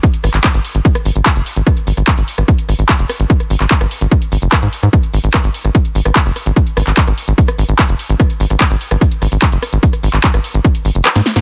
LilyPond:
<<
  \new Staff \with { instrumentName = "Analog synth bass" } { \clef bass \time 4/4 \tempo 4 = 147 r8 gis,,16 gis,,16 r16 gis,,16 r16 gis,,16 r8 gis,,16 gis,,16 r16 fis,,16 r16 gis,,16 | r8 gis,,16 gis,,16 r16 gis,,16 r16 gis,,16 r8 gis,,16 gis,,16 r16 fis,,16 r16 gis,,16 | r8 gis,,16 gis,,16 r16 gis,,16 r16 gis,,16 r8 gis,,16 fis,,16 r16 gis,16 r16 gis,16 | r8 gis,,16 gis,,16 r16 gis,,16 r16 gis,,16 r8 gis,,16 gis,,16 r16 fis,,16 r16 gis,,16 |
r8 gis,,16 gis,,16 r16 gis,,16 r16 gis,,16 r8 gis,,16 gis,,16 r16 fis,,16 r16 gis,,16 | r8 gis,,16 gis,,16 r16 gis,,16 r16 gis,,16 r8 gis,,16 gis,,16 r16 fis,,16 r16 gis,,16 | r8 gis,,16 gis,,16 r16 gis,,16 r16 gis,,16 r8 gis,,16 fis,,16 r16 gis,16 r16 gis,16 | }
  \new DrumStaff \with { instrumentName = "Drums" } \drummode { \time 4/4 <hh bd>16 hh16 <hho ss>16 <hc hh>16 <hc hh bd>16 <hh ss>16 hho16 hh16 <hh bd>16 <hh ss>16 hho16 hh16 <hc hh bd ss>16 hh16 hho16 hh16 | <hh bd ss>16 hh16 hho16 <hh ss>16 <hc hh bd>16 hh16 hho16 <hh ss>16 <hh bd>16 hh16 <hho ss>16 hh16 <hc hh bd>16 hh16 <hho ss>16 hh16 | <hh bd>16 <hh ss>16 hho16 <hc hh>16 <hc hh bd>16 <hh ss>16 hho16 hh16 <hh bd ss>16 hh16 hho16 hh16 <hc hh bd ss>16 hh16 hho16 <hh ss>16 | <hh bd ss>16 hh16 hho16 hh16 <hc hh bd ss>16 hh16 hho16 <hh ss>16 <hh bd>16 hh16 hho16 <hh ss>16 <hc hh bd>16 hh16 <hho ss>16 hh16 |
<hh bd>16 hh16 <hho ss>16 <hc hh>16 <hc hh bd>16 <hh ss>16 hho16 hh16 <hh bd>16 <hh ss>16 hho16 hh16 <hc hh bd ss>16 hh16 hho16 hh16 | <hh bd ss>16 hh16 hho16 <hh ss>16 <hc hh bd>16 hh16 hho16 <hh ss>16 <hh bd>16 hh16 <hho ss>16 hh16 <hc hh bd>16 hh16 <hho ss>16 hh16 | <hh bd>16 <hh ss>16 hho16 <hc hh>16 <hc hh bd>16 <hh ss>16 hho16 hh16 <hh bd ss>16 hh16 hho16 hh16 <hc hh ss>16 <hh sn>16 <hho sn>16 <hh sn>16 | }
>>